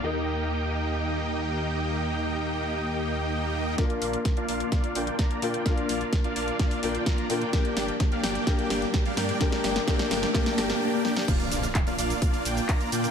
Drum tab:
CC |----------------|----------------|----------------|----------------|
HH |--o---o---o---o-|--o---o--oo---o-|xxoxxxoxxxoxxxox|xxoxxxoxxooxxxox|
SH |----------------|----------------|----------------|----------------|
CP |----------------|----------------|----------------|----------------|
SD |----------------|----------------|o---o---o---o---|o---o---o---o---|
BD |----------------|----------------|o---o---o---o---|o---o---o---o---|

CC |----------------|----------------|x---------------|
HH |xxoxxxoxxxoxxxox|xxoxxxoxxoox----|xxoxxxoxxxoxxxox|
SH |----------------|----------------|xxxxxxxxxxxxxxxx|
CP |----------------|----------------|----x-------x---|
SD |o-o-o-o-o-o-o-o-|oooooooooooo--oo|----------------|
BD |o---o---o---o---|o---o---o-------|o---o---o---o---|